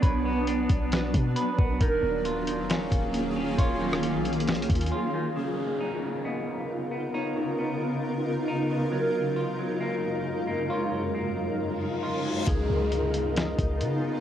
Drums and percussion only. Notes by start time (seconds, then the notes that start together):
0.03 kick, closed hi-hat
0.47 closed hi-hat
0.69 kick, closed hi-hat
0.92 snare, closed hi-hat
1.14 kick, closed hi-hat
1.36 closed hi-hat
1.59 kick
1.81 kick, closed hi-hat
2.25 closed hi-hat
2.47 closed hi-hat
2.70 snare, closed hi-hat
2.92 kick, closed hi-hat
3.14 closed hi-hat
3.59 kick, closed hi-hat
3.93 cross-stick
4.03 closed hi-hat
4.25 closed hi-hat, open hi-hat
4.33 closed hi-hat
4.40 closed hi-hat
4.47 snare, closed hi-hat
4.55 closed hi-hat
4.62 closed hi-hat
4.70 kick, closed hi-hat
4.75 closed hi-hat
4.81 closed hi-hat
4.86 closed hi-hat
12.47 kick, closed hi-hat
12.92 closed hi-hat
13.14 closed hi-hat
13.36 snare, closed hi-hat
13.58 kick, closed hi-hat
13.81 closed hi-hat